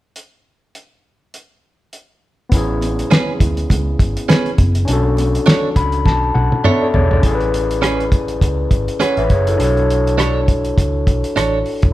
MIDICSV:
0, 0, Header, 1, 5, 480
1, 0, Start_track
1, 0, Key_signature, 3, "major"
1, 0, Tempo, 589971
1, 131, Time_signature, 4, 2, 24, 8
1, 9707, End_track
2, 0, Start_track
2, 0, Title_t, "Tine electric piano"
2, 0, Program_c, 0, 4
2, 2030, Note_on_c, 0, 59, 66
2, 2049, Note_on_c, 0, 61, 62
2, 2069, Note_on_c, 0, 64, 65
2, 2089, Note_on_c, 0, 68, 79
2, 2220, Control_c, 0, 64, 127
2, 3926, Note_off_c, 0, 59, 0
2, 3936, Note_off_c, 0, 61, 0
2, 3946, Note_off_c, 0, 64, 0
2, 3946, Note_on_c, 0, 61, 67
2, 3956, Note_off_c, 0, 68, 0
2, 3966, Note_on_c, 0, 62, 65
2, 3979, Control_c, 0, 64, 0
2, 3988, Note_on_c, 0, 66, 66
2, 4009, Note_on_c, 0, 69, 73
2, 4116, Control_c, 0, 64, 127
2, 4691, Note_on_c, 0, 83, 64
2, 4913, Note_off_c, 0, 83, 0
2, 4929, Note_on_c, 0, 81, 71
2, 5152, Note_off_c, 0, 81, 0
2, 5162, Note_on_c, 0, 78, 66
2, 5388, Note_off_c, 0, 78, 0
2, 5400, Note_off_c, 0, 69, 0
2, 5412, Note_on_c, 0, 76, 68
2, 5550, Note_on_c, 0, 74, 58
2, 5557, Note_on_c, 0, 69, 46
2, 5633, Note_off_c, 0, 76, 0
2, 5642, Note_off_c, 0, 74, 0
2, 5648, Note_off_c, 0, 69, 0
2, 5651, Note_on_c, 0, 74, 61
2, 5653, Note_on_c, 0, 73, 62
2, 5658, Note_on_c, 0, 68, 53
2, 5783, Note_off_c, 0, 73, 0
2, 5786, Note_off_c, 0, 68, 0
2, 5789, Note_off_c, 0, 74, 0
2, 5799, Note_on_c, 0, 74, 57
2, 5801, Note_on_c, 0, 69, 52
2, 5844, Note_off_c, 0, 61, 0
2, 5854, Note_off_c, 0, 62, 0
2, 5864, Note_on_c, 0, 61, 67
2, 5865, Note_off_c, 0, 66, 0
2, 5886, Note_on_c, 0, 64, 62
2, 5900, Control_c, 0, 64, 0
2, 5906, Note_on_c, 0, 68, 63
2, 5919, Note_off_c, 0, 69, 0
2, 5929, Note_on_c, 0, 69, 59
2, 5970, Note_off_c, 0, 69, 0
2, 5978, Note_on_c, 0, 71, 79
2, 6016, Control_c, 0, 64, 127
2, 6021, Note_off_c, 0, 74, 0
2, 7063, Note_off_c, 0, 64, 0
2, 7073, Note_off_c, 0, 68, 0
2, 7110, Note_off_c, 0, 71, 0
2, 7287, Note_off_c, 0, 61, 0
2, 7333, Note_on_c, 0, 78, 58
2, 7338, Note_on_c, 0, 73, 50
2, 7463, Note_off_c, 0, 78, 0
2, 7466, Note_off_c, 0, 73, 0
2, 7470, Note_on_c, 0, 76, 61
2, 7477, Note_on_c, 0, 71, 53
2, 7564, Note_off_c, 0, 76, 0
2, 7568, Note_off_c, 0, 71, 0
2, 7578, Note_on_c, 0, 73, 61
2, 7579, Note_on_c, 0, 68, 53
2, 7705, Note_off_c, 0, 73, 0
2, 7706, Note_off_c, 0, 68, 0
2, 7712, Note_on_c, 0, 69, 60
2, 7717, Note_on_c, 0, 64, 49
2, 7786, Note_on_c, 0, 62, 73
2, 7806, Note_on_c, 0, 66, 61
2, 7816, Note_off_c, 0, 69, 0
2, 7820, Control_c, 0, 64, 0
2, 7826, Note_on_c, 0, 69, 62
2, 7844, Note_on_c, 0, 73, 73
2, 7940, Note_off_c, 0, 64, 0
2, 7945, Control_c, 0, 64, 127
2, 9685, Note_off_c, 0, 62, 0
2, 9695, Note_off_c, 0, 66, 0
2, 9705, Note_off_c, 0, 69, 0
2, 9707, Note_off_c, 0, 73, 0
2, 9707, End_track
3, 0, Start_track
3, 0, Title_t, "Clean electric guitar"
3, 0, Program_c, 1, 27
3, 2528, Note_on_c, 1, 61, 52
3, 2532, Note_on_c, 1, 68, 65
3, 2536, Note_on_c, 1, 71, 63
3, 2703, Note_off_c, 1, 61, 0
3, 2705, Note_off_c, 1, 68, 0
3, 2707, Note_off_c, 1, 71, 0
3, 3487, Note_on_c, 1, 61, 61
3, 3490, Note_on_c, 1, 68, 67
3, 3495, Note_on_c, 1, 71, 66
3, 3663, Note_off_c, 1, 61, 0
3, 3664, Note_off_c, 1, 68, 0
3, 3666, Note_off_c, 1, 71, 0
3, 4444, Note_on_c, 1, 62, 65
3, 4450, Note_on_c, 1, 69, 70
3, 4451, Note_on_c, 1, 73, 72
3, 4621, Note_off_c, 1, 62, 0
3, 4624, Note_off_c, 1, 69, 0
3, 4624, Note_off_c, 1, 73, 0
3, 5405, Note_on_c, 1, 62, 57
3, 5410, Note_on_c, 1, 69, 69
3, 5413, Note_on_c, 1, 73, 71
3, 5581, Note_off_c, 1, 62, 0
3, 5584, Note_off_c, 1, 69, 0
3, 5585, Note_off_c, 1, 73, 0
3, 6361, Note_on_c, 1, 61, 67
3, 6366, Note_on_c, 1, 68, 65
3, 6368, Note_on_c, 1, 71, 64
3, 6539, Note_off_c, 1, 61, 0
3, 6542, Note_off_c, 1, 68, 0
3, 6543, Note_off_c, 1, 71, 0
3, 7321, Note_on_c, 1, 61, 60
3, 7325, Note_on_c, 1, 68, 63
3, 7329, Note_on_c, 1, 71, 73
3, 7499, Note_off_c, 1, 61, 0
3, 7501, Note_off_c, 1, 68, 0
3, 7503, Note_off_c, 1, 71, 0
3, 8282, Note_on_c, 1, 62, 62
3, 8285, Note_on_c, 1, 69, 65
3, 8291, Note_on_c, 1, 73, 71
3, 8460, Note_off_c, 1, 62, 0
3, 8461, Note_off_c, 1, 69, 0
3, 8464, Note_off_c, 1, 73, 0
3, 9242, Note_on_c, 1, 62, 55
3, 9249, Note_on_c, 1, 69, 63
3, 9253, Note_on_c, 1, 73, 64
3, 9420, Note_off_c, 1, 62, 0
3, 9423, Note_off_c, 1, 69, 0
3, 9426, Note_off_c, 1, 73, 0
3, 9707, End_track
4, 0, Start_track
4, 0, Title_t, "Fingered electric bass"
4, 0, Program_c, 2, 33
4, 2050, Note_on_c, 2, 33, 83
4, 2451, Note_off_c, 2, 33, 0
4, 2769, Note_on_c, 2, 38, 83
4, 2969, Note_off_c, 2, 38, 0
4, 3011, Note_on_c, 2, 37, 83
4, 3211, Note_off_c, 2, 37, 0
4, 3249, Note_on_c, 2, 32, 75
4, 3365, Note_off_c, 2, 32, 0
4, 3731, Note_on_c, 2, 30, 81
4, 3931, Note_off_c, 2, 30, 0
4, 3966, Note_on_c, 2, 35, 95
4, 4368, Note_off_c, 2, 35, 0
4, 4687, Note_on_c, 2, 37, 91
4, 4927, Note_off_c, 2, 37, 0
4, 4927, Note_on_c, 2, 35, 86
4, 5128, Note_off_c, 2, 35, 0
4, 5167, Note_on_c, 2, 35, 71
4, 5284, Note_off_c, 2, 35, 0
4, 5644, Note_on_c, 2, 28, 79
4, 5846, Note_off_c, 2, 28, 0
4, 5884, Note_on_c, 2, 33, 76
4, 6813, Note_off_c, 2, 33, 0
4, 6845, Note_on_c, 2, 37, 80
4, 7047, Note_off_c, 2, 37, 0
4, 7084, Note_on_c, 2, 32, 73
4, 7202, Note_off_c, 2, 32, 0
4, 7463, Note_on_c, 2, 33, 80
4, 7549, Note_off_c, 2, 33, 0
4, 7566, Note_on_c, 2, 30, 73
4, 7768, Note_off_c, 2, 30, 0
4, 7805, Note_on_c, 2, 35, 90
4, 8734, Note_off_c, 2, 35, 0
4, 8767, Note_on_c, 2, 37, 81
4, 9008, Note_off_c, 2, 37, 0
4, 9008, Note_on_c, 2, 35, 86
4, 9125, Note_off_c, 2, 35, 0
4, 9247, Note_on_c, 2, 33, 78
4, 9448, Note_off_c, 2, 33, 0
4, 9625, Note_on_c, 2, 28, 86
4, 9707, Note_off_c, 2, 28, 0
4, 9707, End_track
5, 0, Start_track
5, 0, Title_t, "Drums"
5, 128, Note_on_c, 9, 42, 47
5, 209, Note_off_c, 9, 42, 0
5, 610, Note_on_c, 9, 42, 50
5, 691, Note_off_c, 9, 42, 0
5, 1090, Note_on_c, 9, 42, 51
5, 1171, Note_off_c, 9, 42, 0
5, 1569, Note_on_c, 9, 42, 47
5, 1651, Note_off_c, 9, 42, 0
5, 2048, Note_on_c, 9, 42, 85
5, 2050, Note_on_c, 9, 36, 84
5, 2130, Note_off_c, 9, 42, 0
5, 2131, Note_off_c, 9, 36, 0
5, 2291, Note_on_c, 9, 62, 46
5, 2297, Note_on_c, 9, 42, 62
5, 2372, Note_off_c, 9, 62, 0
5, 2379, Note_off_c, 9, 42, 0
5, 2433, Note_on_c, 9, 42, 52
5, 2514, Note_off_c, 9, 42, 0
5, 2531, Note_on_c, 9, 63, 66
5, 2534, Note_on_c, 9, 42, 70
5, 2540, Note_on_c, 9, 38, 101
5, 2612, Note_off_c, 9, 63, 0
5, 2615, Note_off_c, 9, 42, 0
5, 2621, Note_off_c, 9, 38, 0
5, 2769, Note_on_c, 9, 36, 82
5, 2772, Note_on_c, 9, 42, 67
5, 2773, Note_on_c, 9, 64, 69
5, 2851, Note_off_c, 9, 36, 0
5, 2854, Note_off_c, 9, 42, 0
5, 2854, Note_off_c, 9, 64, 0
5, 2906, Note_on_c, 9, 42, 45
5, 2987, Note_off_c, 9, 42, 0
5, 3009, Note_on_c, 9, 62, 46
5, 3009, Note_on_c, 9, 64, 67
5, 3011, Note_on_c, 9, 36, 74
5, 3020, Note_on_c, 9, 42, 84
5, 3090, Note_off_c, 9, 62, 0
5, 3090, Note_off_c, 9, 64, 0
5, 3093, Note_off_c, 9, 36, 0
5, 3101, Note_off_c, 9, 42, 0
5, 3250, Note_on_c, 9, 36, 80
5, 3254, Note_on_c, 9, 42, 62
5, 3331, Note_off_c, 9, 36, 0
5, 3335, Note_off_c, 9, 42, 0
5, 3391, Note_on_c, 9, 42, 56
5, 3472, Note_off_c, 9, 42, 0
5, 3489, Note_on_c, 9, 63, 70
5, 3494, Note_on_c, 9, 42, 74
5, 3499, Note_on_c, 9, 38, 94
5, 3570, Note_off_c, 9, 63, 0
5, 3575, Note_off_c, 9, 42, 0
5, 3580, Note_off_c, 9, 38, 0
5, 3628, Note_on_c, 9, 42, 32
5, 3710, Note_off_c, 9, 42, 0
5, 3727, Note_on_c, 9, 63, 57
5, 3729, Note_on_c, 9, 42, 54
5, 3730, Note_on_c, 9, 36, 88
5, 3808, Note_off_c, 9, 63, 0
5, 3810, Note_off_c, 9, 42, 0
5, 3811, Note_off_c, 9, 36, 0
5, 3864, Note_on_c, 9, 42, 56
5, 3946, Note_off_c, 9, 42, 0
5, 3968, Note_on_c, 9, 42, 87
5, 4050, Note_off_c, 9, 42, 0
5, 4206, Note_on_c, 9, 62, 55
5, 4217, Note_on_c, 9, 42, 67
5, 4287, Note_off_c, 9, 62, 0
5, 4299, Note_off_c, 9, 42, 0
5, 4353, Note_on_c, 9, 42, 52
5, 4434, Note_off_c, 9, 42, 0
5, 4441, Note_on_c, 9, 63, 69
5, 4451, Note_on_c, 9, 42, 73
5, 4457, Note_on_c, 9, 38, 108
5, 4523, Note_off_c, 9, 63, 0
5, 4533, Note_off_c, 9, 42, 0
5, 4538, Note_off_c, 9, 38, 0
5, 4686, Note_on_c, 9, 36, 81
5, 4687, Note_on_c, 9, 42, 66
5, 4768, Note_off_c, 9, 36, 0
5, 4768, Note_off_c, 9, 42, 0
5, 4819, Note_on_c, 9, 42, 44
5, 4900, Note_off_c, 9, 42, 0
5, 4927, Note_on_c, 9, 36, 80
5, 4927, Note_on_c, 9, 62, 48
5, 4937, Note_on_c, 9, 38, 51
5, 5008, Note_off_c, 9, 36, 0
5, 5008, Note_off_c, 9, 62, 0
5, 5019, Note_off_c, 9, 38, 0
5, 5169, Note_on_c, 9, 48, 56
5, 5250, Note_off_c, 9, 48, 0
5, 5306, Note_on_c, 9, 48, 58
5, 5387, Note_off_c, 9, 48, 0
5, 5403, Note_on_c, 9, 63, 71
5, 5405, Note_on_c, 9, 47, 66
5, 5485, Note_off_c, 9, 63, 0
5, 5486, Note_off_c, 9, 47, 0
5, 5643, Note_on_c, 9, 63, 64
5, 5646, Note_on_c, 9, 43, 78
5, 5724, Note_off_c, 9, 63, 0
5, 5727, Note_off_c, 9, 43, 0
5, 5785, Note_on_c, 9, 43, 74
5, 5866, Note_off_c, 9, 43, 0
5, 5883, Note_on_c, 9, 42, 74
5, 5885, Note_on_c, 9, 36, 82
5, 5965, Note_off_c, 9, 42, 0
5, 5966, Note_off_c, 9, 36, 0
5, 6025, Note_on_c, 9, 42, 29
5, 6106, Note_off_c, 9, 42, 0
5, 6134, Note_on_c, 9, 42, 65
5, 6215, Note_off_c, 9, 42, 0
5, 6270, Note_on_c, 9, 42, 51
5, 6352, Note_off_c, 9, 42, 0
5, 6372, Note_on_c, 9, 42, 70
5, 6378, Note_on_c, 9, 37, 102
5, 6453, Note_off_c, 9, 42, 0
5, 6459, Note_off_c, 9, 37, 0
5, 6511, Note_on_c, 9, 42, 32
5, 6593, Note_off_c, 9, 42, 0
5, 6605, Note_on_c, 9, 36, 78
5, 6608, Note_on_c, 9, 42, 64
5, 6686, Note_off_c, 9, 36, 0
5, 6689, Note_off_c, 9, 42, 0
5, 6740, Note_on_c, 9, 42, 44
5, 6821, Note_off_c, 9, 42, 0
5, 6846, Note_on_c, 9, 36, 77
5, 6853, Note_on_c, 9, 42, 80
5, 6927, Note_off_c, 9, 36, 0
5, 6934, Note_off_c, 9, 42, 0
5, 7085, Note_on_c, 9, 36, 73
5, 7087, Note_on_c, 9, 42, 53
5, 7166, Note_off_c, 9, 36, 0
5, 7169, Note_off_c, 9, 42, 0
5, 7226, Note_on_c, 9, 42, 53
5, 7307, Note_off_c, 9, 42, 0
5, 7327, Note_on_c, 9, 42, 71
5, 7332, Note_on_c, 9, 37, 86
5, 7408, Note_off_c, 9, 42, 0
5, 7413, Note_off_c, 9, 37, 0
5, 7461, Note_on_c, 9, 42, 31
5, 7542, Note_off_c, 9, 42, 0
5, 7564, Note_on_c, 9, 42, 48
5, 7567, Note_on_c, 9, 36, 74
5, 7645, Note_off_c, 9, 42, 0
5, 7648, Note_off_c, 9, 36, 0
5, 7705, Note_on_c, 9, 42, 52
5, 7786, Note_off_c, 9, 42, 0
5, 7809, Note_on_c, 9, 42, 84
5, 7891, Note_off_c, 9, 42, 0
5, 7950, Note_on_c, 9, 42, 27
5, 8032, Note_off_c, 9, 42, 0
5, 8058, Note_on_c, 9, 42, 60
5, 8140, Note_off_c, 9, 42, 0
5, 8195, Note_on_c, 9, 42, 50
5, 8277, Note_off_c, 9, 42, 0
5, 8293, Note_on_c, 9, 42, 75
5, 8299, Note_on_c, 9, 37, 97
5, 8374, Note_off_c, 9, 42, 0
5, 8380, Note_off_c, 9, 37, 0
5, 8527, Note_on_c, 9, 36, 82
5, 8529, Note_on_c, 9, 42, 67
5, 8609, Note_off_c, 9, 36, 0
5, 8610, Note_off_c, 9, 42, 0
5, 8661, Note_on_c, 9, 42, 45
5, 8742, Note_off_c, 9, 42, 0
5, 8767, Note_on_c, 9, 36, 78
5, 8772, Note_on_c, 9, 42, 82
5, 8849, Note_off_c, 9, 36, 0
5, 8853, Note_off_c, 9, 42, 0
5, 9006, Note_on_c, 9, 36, 81
5, 9011, Note_on_c, 9, 42, 58
5, 9088, Note_off_c, 9, 36, 0
5, 9092, Note_off_c, 9, 42, 0
5, 9145, Note_on_c, 9, 42, 56
5, 9227, Note_off_c, 9, 42, 0
5, 9249, Note_on_c, 9, 42, 70
5, 9254, Note_on_c, 9, 37, 87
5, 9331, Note_off_c, 9, 42, 0
5, 9336, Note_off_c, 9, 37, 0
5, 9484, Note_on_c, 9, 46, 38
5, 9565, Note_off_c, 9, 46, 0
5, 9619, Note_on_c, 9, 42, 51
5, 9625, Note_on_c, 9, 36, 86
5, 9701, Note_off_c, 9, 42, 0
5, 9707, Note_off_c, 9, 36, 0
5, 9707, End_track
0, 0, End_of_file